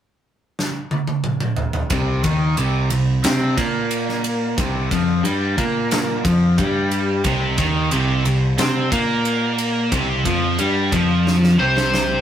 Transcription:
0.59 snare
0.91 high tom
1.07 high tom
1.24 mid tom
1.40 mid tom
1.56 floor tom
1.73 floor tom
1.90 picked electric bass C2, overdriven electric guitar C3, kick, ride
2.24 picked electric bass D#2, overdriven electric guitar D#3, kick, ride
2.57 picked electric bass C2, overdriven electric guitar C3, ride
2.90 picked electric bass C2, overdriven electric guitar C3, ride
3.24 picked electric bass C3, overdriven electric guitar C4, snare, ride
3.57 picked electric bass A#2, overdriven electric guitar A#3, kick, ride
3.91 ride
4.09 snare
4.24 ride
4.58 picked electric bass C2, overdriven electric guitar C3, kick, ride
4.91 picked electric bass F2, overdriven electric guitar F3, kick, ride
5.23 picked electric bass G2, overdriven electric guitar G3, ride
5.58 picked electric bass A#2, overdriven electric guitar A#3, kick, ride
5.91 snare, ride
6.25 picked electric bass F2, overdriven electric guitar F3, kick, ride
6.57 picked electric bass G2, overdriven electric guitar G3, kick, ride
6.91 ride
7.24 picked electric bass C2, overdriven electric guitar C3, kick, ride
7.58 picked electric bass D#2, overdriven electric guitar D#3, kick, ride
7.91 picked electric bass C2, overdriven electric guitar C3, ride
8.25 picked electric bass C2, overdriven electric guitar C3, ride
8.58 picked electric bass C3, overdriven electric guitar C4, snare, ride
8.91 picked electric bass A#2, overdriven electric guitar A#3, kick, ride
9.25 ride
9.58 ride
9.92 picked electric bass C2, overdriven electric guitar C3, kick, ride
10.25 picked electric bass F2, overdriven electric guitar F3, kick, ride
10.58 picked electric bass G2, overdriven electric guitar G3, ride
10.91 picked electric bass F2, overdriven electric guitar F3, kick, ride
11.27 snare
11.44 snare
11.58 picked electric bass C2, overdriven electric guitar C3, lead electric guitar C5
11.77 snare
11.94 snare

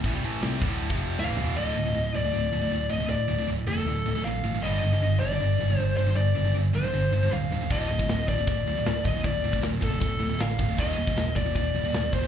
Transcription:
0.03 picked electric bass A1, distorted electric guitar A2 E3, kick, crash
0.14 picked electric bass C2, distorted electric guitar C3 G3
0.23 picked electric bass A1, distorted electric guitar A2 E3 A3, crash
0.42 picked electric bass C2, distorted electric guitar C3 G3 C4, snare, crash
0.53 snare
0.62 picked electric bass D1, distorted electric guitar D2 A2 D3, kick, crash
0.80 crash
0.90 picked electric bass F1, distorted electric guitar F2 C3 F3, kick
0.99 crash
1.19 picked electric bass D1, distorted electric guitar D2 A2, lead electric guitar F5, snare
1.28 picked electric bass A1, distorted electric guitar A2 E3
1.37 picked electric bass E1, distorted electric guitar E2 B2 E3, floor tom
1.56 picked electric bass D1, distorted electric guitar D2 A2 D3, lead electric guitar D#5
1.76 picked electric bass D1, distorted electric guitar D2 A2
1.85 distorted electric guitar D2 A2
1.94 picked electric bass D1, distorted electric guitar D2 A2
2.13 picked electric bass D1, distorted electric guitar D2 A2, lead electric guitar D5
2.23 distorted electric guitar D2 A2
2.33 picked electric bass D1, distorted electric guitar D2 A2
2.51 picked electric bass D1, distorted electric guitar D2 A2
2.61 distorted electric guitar D2 A2
2.71 picked electric bass D1, distorted electric guitar D2 A2
2.89 picked electric bass D1, distorted electric guitar D2 A2, lead electric guitar D#5
3.00 distorted electric guitar D2 A2
3.09 picked electric bass D1, distorted electric guitar D2 A2, lead electric guitar D5
3.29 picked electric bass D1, distorted electric guitar D2 A2
3.39 distorted electric guitar D2 A2
3.48 picked electric bass D1, distorted electric guitar D2 A2
3.66 picked electric bass F1, distorted electric guitar D2 A2, lead electric guitar A4
3.78 distorted electric guitar D2 A2
3.86 picked electric bass D1, distorted electric guitar D2 A2
4.06 picked electric bass D1, distorted electric guitar D2 A2
4.16 distorted electric guitar D2 A2
4.24 picked electric bass A1, distorted electric guitar D2 A2, lead electric guitar F5
4.44 picked electric bass A1, distorted electric guitar D2 A2
4.54 distorted electric guitar D2 A2
4.63 picked electric bass G1, distorted electric guitar G2 D3 G3, lead electric guitar D#5
4.82 picked electric bass G1, distorted electric guitar G2 D3
4.93 distorted electric guitar G2 D3
5.01 picked electric bass G1, distorted electric guitar G2 D3
5.20 picked electric bass G1, distorted electric guitar G2 D3, lead electric guitar D5
5.31 distorted electric guitar G2 D3
5.40 picked electric bass G1, distorted electric guitar G2 D3
5.59 picked electric bass G1, distorted electric guitar G2 D3
5.69 distorted electric guitar G2 D3
5.78 picked electric bass G1, distorted electric guitar G2 D3, lead electric guitar C5
5.97 picked electric bass G1, distorted electric guitar G2 D3, lead electric guitar C5
6.07 distorted electric guitar G2 D3
6.16 picked electric bass G1, distorted electric guitar G2 D3, lead electric guitar D5
6.36 picked electric bass G1, distorted electric guitar G2 D3
6.45 distorted electric guitar G2 D3
6.54 picked electric bass G1, distorted electric guitar G2 D3
6.73 picked electric bass A#1, distorted electric guitar G2 D3, lead electric guitar C5
6.83 distorted electric guitar G2 D3
6.93 picked electric bass G1, distorted electric guitar G2 D3
7.12 picked electric bass G1, distorted electric guitar G2 D3
7.22 distorted electric guitar G2 D3
7.31 picked electric bass D1, distorted electric guitar G2 D3, lead electric guitar F5
7.51 picked electric bass D#1, distorted electric guitar G2 D3
7.60 distorted electric guitar G2 D3
7.70 picked electric bass D1, distorted electric guitar D2 A2 D3, lead electric guitar D#5, kick, crash
7.89 picked electric bass D1, distorted electric guitar D2 A2
7.99 distorted electric guitar D2 A2, kick
8.08 picked electric bass D1, distorted electric guitar D2 A2, snare, crash
8.28 picked electric bass D1, distorted electric guitar D2 A2, lead electric guitar D5, kick
8.38 distorted electric guitar D2 A2
8.47 picked electric bass D1, distorted electric guitar D2 A2, kick, crash
8.66 picked electric bass D1, distorted electric guitar D2 A2
8.76 distorted electric guitar D2 A2
8.85 picked electric bass D1, distorted electric guitar D2 A2, snare, crash
9.04 picked electric bass D1, distorted electric guitar D2 A2, lead electric guitar D#5, kick
9.13 distorted electric guitar D2 A2
9.23 picked electric bass D1, distorted electric guitar D2 A2, lead electric guitar D5, kick, crash
9.42 picked electric bass D1, distorted electric guitar D2 A2
9.52 distorted electric guitar D2 A2, kick
9.61 picked electric bass D1, distorted electric guitar D2 A2, snare, crash
9.80 picked electric bass F1, distorted electric guitar D2 A2, lead electric guitar A4, kick
9.90 distorted electric guitar D2 A2
10.00 picked electric bass D1, distorted electric guitar D2 A2, kick, crash
10.20 picked electric bass D1, distorted electric guitar D2 A2
10.29 distorted electric guitar D2 A2
10.39 picked electric bass A1, distorted electric guitar D2 A2, lead electric guitar F5, snare, crash
10.58 picked electric bass F1, distorted electric guitar D2 A2, kick
10.68 distorted electric guitar D2 A2
10.78 picked electric bass D#1, distorted electric guitar D#2 A#2 D#3, lead electric guitar D#5, kick, crash
10.97 picked electric bass D#1, distorted electric guitar D#2 A#2
11.07 distorted electric guitar D#2 A#2, kick
11.16 picked electric bass D#1, distorted electric guitar D#2 A#2, snare, crash
11.36 picked electric bass D#1, distorted electric guitar D#2 A#2, lead electric guitar D5, kick
11.45 distorted electric guitar D#2 A#2
11.55 picked electric bass D#1, distorted electric guitar D#2 A#2, kick, crash
11.74 picked electric bass D#1, distorted electric guitar D#2 A#2
11.83 distorted electric guitar D#2 A#2
11.93 picked electric bass D#1, distorted electric guitar D#2 A#2, snare, crash
12.11 picked electric bass D#1, distorted electric guitar D#2 A#2, lead electric guitar C5, kick
12.21 distorted electric guitar D#2 A#2

